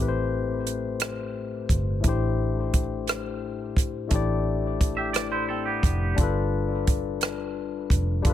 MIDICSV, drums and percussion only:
0, 0, Header, 1, 2, 480
1, 0, Start_track
1, 0, Tempo, 689655
1, 1420, Time_signature, 6, 3, 24, 8
1, 5802, End_track
2, 0, Start_track
2, 0, Title_t, "Drums"
2, 464, Note_on_c, 9, 42, 69
2, 534, Note_off_c, 9, 42, 0
2, 695, Note_on_c, 9, 42, 66
2, 708, Note_on_c, 9, 37, 97
2, 765, Note_off_c, 9, 42, 0
2, 778, Note_off_c, 9, 37, 0
2, 1178, Note_on_c, 9, 36, 94
2, 1183, Note_on_c, 9, 42, 67
2, 1248, Note_off_c, 9, 36, 0
2, 1253, Note_off_c, 9, 42, 0
2, 1419, Note_on_c, 9, 42, 66
2, 1421, Note_on_c, 9, 36, 83
2, 1488, Note_off_c, 9, 42, 0
2, 1491, Note_off_c, 9, 36, 0
2, 1905, Note_on_c, 9, 42, 63
2, 1906, Note_on_c, 9, 36, 88
2, 1974, Note_off_c, 9, 42, 0
2, 1975, Note_off_c, 9, 36, 0
2, 2140, Note_on_c, 9, 42, 73
2, 2153, Note_on_c, 9, 37, 93
2, 2210, Note_off_c, 9, 42, 0
2, 2223, Note_off_c, 9, 37, 0
2, 2621, Note_on_c, 9, 36, 96
2, 2631, Note_on_c, 9, 42, 77
2, 2690, Note_off_c, 9, 36, 0
2, 2700, Note_off_c, 9, 42, 0
2, 2858, Note_on_c, 9, 42, 74
2, 2861, Note_on_c, 9, 36, 93
2, 2928, Note_off_c, 9, 42, 0
2, 2931, Note_off_c, 9, 36, 0
2, 3346, Note_on_c, 9, 36, 88
2, 3348, Note_on_c, 9, 42, 63
2, 3415, Note_off_c, 9, 36, 0
2, 3417, Note_off_c, 9, 42, 0
2, 3578, Note_on_c, 9, 42, 72
2, 3592, Note_on_c, 9, 37, 90
2, 3648, Note_off_c, 9, 42, 0
2, 3661, Note_off_c, 9, 37, 0
2, 4058, Note_on_c, 9, 36, 93
2, 4065, Note_on_c, 9, 42, 78
2, 4128, Note_off_c, 9, 36, 0
2, 4134, Note_off_c, 9, 42, 0
2, 4300, Note_on_c, 9, 42, 65
2, 4301, Note_on_c, 9, 36, 97
2, 4369, Note_off_c, 9, 42, 0
2, 4370, Note_off_c, 9, 36, 0
2, 4784, Note_on_c, 9, 42, 64
2, 4785, Note_on_c, 9, 36, 86
2, 4853, Note_off_c, 9, 42, 0
2, 4855, Note_off_c, 9, 36, 0
2, 5018, Note_on_c, 9, 42, 62
2, 5032, Note_on_c, 9, 37, 101
2, 5088, Note_off_c, 9, 42, 0
2, 5101, Note_off_c, 9, 37, 0
2, 5499, Note_on_c, 9, 36, 91
2, 5507, Note_on_c, 9, 42, 82
2, 5569, Note_off_c, 9, 36, 0
2, 5577, Note_off_c, 9, 42, 0
2, 5740, Note_on_c, 9, 42, 72
2, 5741, Note_on_c, 9, 36, 97
2, 5802, Note_off_c, 9, 36, 0
2, 5802, Note_off_c, 9, 42, 0
2, 5802, End_track
0, 0, End_of_file